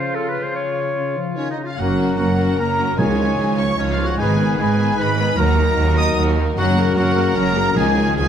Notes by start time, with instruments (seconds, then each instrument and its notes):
Already playing: harp C#3 F3 A3 C4 F4, french horn section C#3, trumpet section F4, clarinet C5, oboe C5
0.15 clarinet A4, oboe A4
0.28 oboe B4, clarinet B4
0.37 harp C#3
0.42 harp G#3, oboe C5, clarinet C5
0.46 harp C#4
0.51 harp F4
0.56 clarinet C#5, oboe C#5
0.96 french horn section C#3
1.17 french horn section F3
1.36 french horn section D#3, oboe C#4, clarinet C#4, violin section C#5, flute section C#5
1.51 oboe D#4, clarinet D#4, flute section D#5, violin section D#5
1.57 french horn section C#3
1.64 clarinet F4, oboe F4, flute section F5, violin section F5
1.76 double bass section F#1, cello section F#2, harp F#2, french horn section F#3 C#4, viola section A#3, violin section C#4 F#5, clarinet F#4, oboe F#4, trumpet section A#4, flute section F#5
1.88 harp C#3
1.97 viola section F#3 C#4, violin section A#3 F#4, harp A#3
2.08 harp C#4
2.17 double bass section F#1, cello section F#2, french horn section F#3 C#4, viola section A#3, violin section C#4 F#5, oboe F#4, clarinet F#4, harp F#4, trumpet section A#4, flute section F#5
2.29 harp A#4
2.38 viola section F#3 C#4, violin section A#3 F#4, harp C#5
2.49 harp F#5
2.56 double bass section F#1, cello section F#2, french horn section F#3 C#4, viola section A#3, violin section C#4 A#5, clarinet A#4, oboe A#4, trumpet section A#4, harp C#5, flute section A#5
2.70 harp A#4
2.76 viola section F#3 C#4, violin section A#3 F#4, harp F#4
2.89 harp A#3
2.97 double bass section C#2, cello section C#2, timpani C#3, harp C#3, viola section D#3 G#3, french horn section F3 D#4, violin section D#4 F4 G#5, oboe G#4, clarinet G#4, trumpet section C#5, flute section G#5
3.08 harp G#3
3.17 viola section D#3 F3, violin section C#4 F4, harp C#4
3.29 harp D#4
3.38 double bass section C#2, cello section C#2, viola section D#3 G#3, violin section D#4 F4, harp F4
3.50 harp C#5
3.57 viola section D#3 F3, violin section C#4 F4 C#6, clarinet C#5, oboe C#5, harp D#5, flute section C#6
3.69 harp F5
3.77 cello section C#2, double bass section C#2, viola section D#3 G#3, clarinet C#4, oboe C#4, violin section D#4 F4 C#5, french horn section D#4, trumpet section C#5, flute section C#5, harp D#5
3.81 french horn section F3
3.89 clarinet F4, oboe F4, harp C#5, flute section F5, violin section F5
3.98 viola section D#3 F3, violin section C#4 F4, harp F4
4.03 clarinet F#4, oboe F#4, flute section F#5, violin section F#5
4.10 harp C#4
4.16 double bass section G#1, cello section G#2, harp G#2, french horn section D#3 D#4, viola section G#3, violin section D#4 G#5, clarinet G#4, oboe G#4, trumpet section B4, flute section G#5
4.29 harp D#3
4.37 viola section D#3 B3, violin section B3 G#4, harp B3
4.50 harp D#4
4.58 double bass section G#1, cello section G#2, french horn section D#3 D#4, viola section G#3, violin section D#4 G#5, clarinet G#4, oboe G#4, harp G#4, trumpet section B4, flute section G#5
4.70 harp B4
4.77 viola section D#3 B3, violin section B3 G#4, harp D#5
4.90 harp G#5
4.97 double bass section G#1, cello section G#2, french horn section D#3 D#4, viola section G#3, violin section D#4 B5, oboe B4, trumpet section B4, clarinet B4, harp D#5, flute section B5
5.09 harp B4
5.18 viola section D#3 B3, violin section B3 G#4, harp G#4
5.29 harp B3
5.36 cello section D#2, double bass section D#2, harp D#3, viola section F#3, french horn section F#3 D#4, violin section D#4 F#4 A#5, oboe A#4, clarinet A#4, trumpet section A#4, flute section A#5
5.48 harp A#3
5.57 viola section D#3, violin section A#3 D#4, harp D#4
5.68 harp F#4
5.77 cello section D#2, double bass section D#2, viola section F#3, violin section D#4 F#4, harp A#4
5.88 harp D#5
5.96 viola section D#3, violin section A#3 D#4 D#6, clarinet D#5, oboe D#5, harp F#5, flute section D#6
6.08 harp A#5
6.17 double bass section D#2, cello section D#2, viola section F#3, violin section D#4 F#4, harp F#5
6.28 harp D#5
6.37 viola section D#3, violin section A#3 D#4
6.47 harp D#4
6.56 double bass section F#1, harp F#2, cello section F#2, viola section F#3, french horn section F#3 C#4, violin section C#4 F#4 F#5, clarinet F#4, oboe F#4, trumpet section A#4, flute section F#5
6.67 harp C#3
6.76 viola section C#3 A#3, violin section A#3 A#4, harp A#3
6.88 harp C#4
6.96 double bass section F#1, cello section F#2, viola section F#3, french horn section F#3 C#4, violin section C#4 F#4 F#5, oboe F#4, clarinet F#4, harp F#4, trumpet section A#4, flute section F#5
7.08 harp A#4
7.15 viola section C#3 A#3, violin section A#3 A#4, harp C#5
7.28 harp F#5
7.34 double bass section F#1, cello section F#2, viola section F#3, french horn section F#3 C#4, violin section C#4 F#4 A#5, clarinet A#4, trumpet section A#4, oboe A#4, harp C#5, flute section A#5
7.47 harp A#4
7.55 viola section C#3 A#3, violin section A#3 A#4, harp F#4
7.67 harp A#3
7.75 double bass section C#2, cello section C#2, timpani C#3, harp C#3, viola section D#3 F3, french horn section F3 D#4, violin section C#4 D#4, clarinet G#4, oboe G#4, trumpet section G#4, flute section G#5
7.79 violin section G#5
7.87 harp G#3
7.95 viola section C#3 D#3, violin section G#3 C#4, harp C#4
8.06 harp D#4
8.14 cello section C#2, double bass section C#2, viola section D#3 F3, french horn section F3 D#4, violin section C#4 D#4 G#5, harp F4, clarinet G#4, trumpet section G#4, oboe G#4, flute section G#5